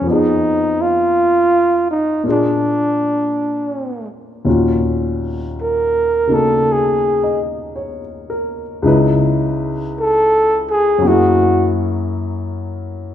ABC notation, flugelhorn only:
X:1
M:4/4
L:1/8
Q:"Swing" 1/4=55
K:Ebm
V:1 name="Flugelhorn"
E F2 E =D3 z | z2 B =A _A z3 | z2 =A _A G z3 |]